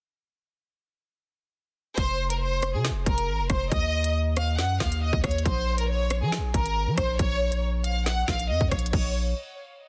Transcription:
1.97 F1 C5, kick, closed hi-hat
2.30 A#4, closed hi-hat
2.41 C5
2.62 cross-stick, closed hi-hat
2.74 C3 G#4
2.85 snare, closed hi-hat
2.90 F1
3.06 F1 A#4, kick, closed hi-hat
3.18 closed hi-hat
3.28 G#1
3.39 F1
3.50 F1 C5, kick, cross-stick, closed hi-hat
3.72 D#2 D#5, kick, closed hi-hat
4.04 closed hi-hat
4.37 F5, cross-stick, closed hi-hat
4.58 F#2 F#5, snare, closed hi-hat
4.80 D#2 F5, kick, snare
4.92 closed hi-hat
5.02 D#5
5.13 D#2, kick
5.24 D#2 C#5, kick, cross-stick, closed hi-hat
5.31 closed hi-hat
5.38 closed hi-hat
5.46 A#1 C5, kick, closed hi-hat
5.78 A#4, closed hi-hat
5.89 C#5
6.10 cross-stick, closed hi-hat
6.22 F3 G#4
6.32 snare, closed hi-hat
6.38 A#1
6.54 G#1 A#4, kick, closed hi-hat
6.66 closed hi-hat
6.87 F3
6.97 A#1 C5, kick, cross-stick, closed hi-hat
7.19 A#1 C#5, kick, closed hi-hat
7.52 closed hi-hat
7.84 F5, closed hi-hat
8.06 F#5, snare, closed hi-hat
8.28 A#1 F5, kick, snare
8.40 closed hi-hat
8.49 F2 D#5
8.61 F2, kick
8.71 A#1 C#5, kick, cross-stick, closed hi-hat
8.79 closed hi-hat
8.86 closed hi-hat
8.93 A#1 C#5, kick, crash

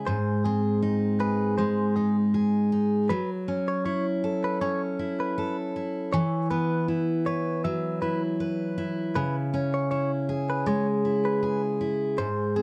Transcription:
Already playing: G#3 C#4 E4 G#4
0.07 G#2 C5
0.44 C4 G#4
0.83 D#4
1.20 G#4 B4
1.58 G#3 C5
1.96 D#4 G#4
2.34 G#4
2.72 D#4
3.09 F#3 B4
3.48 C#4
3.68 C#5
3.85 E4 C#5
4.24 A4
4.44 B4
4.61 C#4 C#5
4.99 E4
5.20 B4
5.38 A4
5.76 E4
6.13 E3 C#5
6.50 B3 B4
6.88 E4
7.26 B4 C#5
7.64 F#3 E5
8.02 E4 B4
8.40 B4
8.78 E4
9.16 C#3 B4
9.54 C#4
9.74 C#5
9.91 E4 C#5
10.29 G#4
10.50 B4
10.66 G#3 C#5
11.05 E4
11.25 B4
11.43 G#4
11.81 E4
12.18 G#2 C5
12.56 C4 G#4

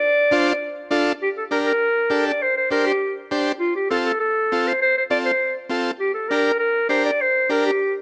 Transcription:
Already playing: D5
0.31 D4 F4 C5
0.91 D4 F4 A4
1.23 G4
1.38 A4
1.51 D4 G4 A#4
1.67 A#4
2.10 D4 G4 A4
2.27 D5
2.42 C5
2.57 C5
2.71 D4 G4 A#4 C5
2.87 G4
3.31 D4 G4 C5
3.59 F4
3.76 G4
3.90 C4 F4 A4
4.06 A4
4.20 A4
4.52 C4 F4 A4
4.68 C5
4.82 C5
4.98 C5
5.10 C4 F4 A4 D5
5.26 C5
5.69 C4 F4 A4
6.00 G4
6.14 A4
6.29 D4 G4 A#4
6.59 A#4
6.89 D4 G4 A#4 C5
7.05 D5
7.21 C5
7.49 D4 G4 A#4
7.66 G4

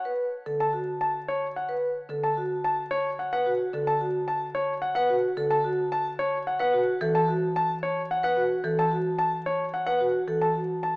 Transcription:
0.05 B4
0.46 D3 A4
0.60 A5
0.73 F#4
1.01 A5
1.28 C#5
1.56 F#5
1.69 B4
2.09 D3 A4
2.24 A5
2.37 F#4
2.64 A5
2.91 C#5
3.19 F#5
3.33 B4 F#5
3.46 F#4
3.74 D3 A4
3.87 A5
4.01 F#4
4.28 A5
4.55 C#5
4.82 F#5
4.95 B4 F#5
5.10 F#4
5.37 D3 A4
5.51 A5
5.64 F#4
5.92 A5
6.19 C#5
6.47 F#5
6.59 B4 F#5
6.73 F#4
7.01 E3 A4
7.15 A5
7.28 F#4
7.56 A5
7.83 C#5
8.11 F#5
8.23 B4 F#5
8.37 F#4
8.64 E3 A4
8.79 A5
8.92 F#4
9.19 A5
9.46 C#5
9.74 F#5
9.87 B4 F#5
10.01 F#4
10.28 E3 A4
10.42 A5
10.56 F#4
10.83 A5

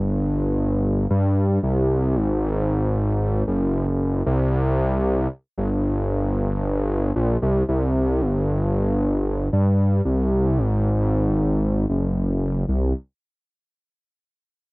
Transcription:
Already playing: G1
1.10 G2
1.63 C2
2.16 G#1
3.47 F#1
4.26 C2
5.58 G1
7.16 A#1
7.42 C2
7.68 C2
8.21 G1
9.53 G2
10.05 C2
10.58 G#1
11.89 F#1
12.68 C2

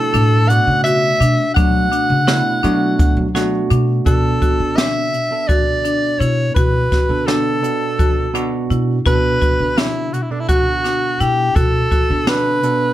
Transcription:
Already playing: B2 A3 D4 F#4 A4
0.14 A2 D4, closed hi-hat
0.48 B2 A3 F#4 D5 F#5, closed hi-hat
0.67 C#3
0.84 F#4 E5, closed hi-hat
1.20 B2 D4, closed hi-hat
1.54 B2 F#3 A3 D4 F#4 F#5, kick, closed hi-hat
1.92 D4, closed hi-hat
2.10 C#3
2.27 B2 A3 D4 E4, snare, closed hi-hat
2.63 B2 F#3 A3 D4 F#4, closed hi-hat
2.99 kick, closed hi-hat
3.17 F#3
3.34 B2 A3 D4 F#4, snare, closed hi-hat
3.70 B2 D4, closed hi-hat
4.06 B2 B3 D4 F#4 A4, kick, closed hi-hat
4.42 F#4, kick, closed hi-hat
4.59 D3
4.76 D4 E5, snare, closed hi-hat
5.13 B2, closed hi-hat
5.31 B2 B3 D4 A4
5.47 F#4 D5, kick, closed hi-hat
5.67 D3
5.85 D4, closed hi-hat
6.19 B2 E4 C#5, closed hi-hat
6.54 B2 F#4 B4, kick, closed hi-hat
6.92 F#4, kick, snare, closed hi-hat
7.09 B2 D3 B3 D4 A4
7.26 B2 B3 D4 A4, snare, closed hi-hat
7.62 B2 B3 D4 A4, closed hi-hat
7.99 F#4, kick, closed hi-hat
8.17 D3
8.34 B2 B3 D4 F#4, closed hi-hat
8.70 B2 E4, closed hi-hat
9.06 B2 B3 D4 F#4 A4 B4, kick, closed hi-hat
9.42 F#4, kick, closed hi-hat
9.60 D3
9.78 D4 E4, snare, closed hi-hat
10.13 B2 F#4, closed hi-hat
10.22 E4
10.31 B2 B3 D4 A4
10.40 E4
10.49 F#4, kick, closed hi-hat
10.67 D3
10.84 D4, snare, closed hi-hat
11.20 B2 E4 G4, closed hi-hat
11.56 B2 F#4 A4, kick, closed hi-hat
11.91 F#4, kick, closed hi-hat
12.09 B2 D3 B3 D4 A4
12.27 B2 B3 D4 A4 B4, snare, closed hi-hat
12.63 B2 B3 D4 A4, closed hi-hat

